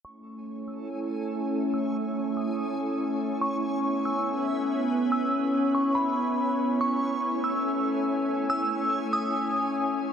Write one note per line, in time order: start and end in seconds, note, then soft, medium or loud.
0.04 3.39 A3 medium
0.04 10.13 C#4 medium
0.04 3.39 E4 medium
0.04 3.39 A4 medium
0.04 10.13 C#5 medium
0.04 6.76 G#5 medium
0.04 3.39 G#5 medium
0.04 10.13 C#6 medium
0.04 0.64 C#6 medium
0.68 1.27 E6 medium
1.74 2.33 E6 loud
2.37 2.96 D#6 medium
3.41 6.77 B3 medium
3.41 10.13 E4 medium
3.41 6.77 B4 medium
3.41 6.77 E5 medium
3.41 4.01 C#6 loud
4.05 4.65 E6 medium
5.12 5.71 E6 medium
5.75 5.95 C#6 medium
5.95 6.76 B5 medium
6.80 10.13 A3 medium
6.80 10.13 A4 medium
6.80 10.13 G#5 medium
6.80 7.40 C#6 loud
7.44 8.03 E6 medium
8.50 9.09 E6 loud
9.13 9.72 D#6 medium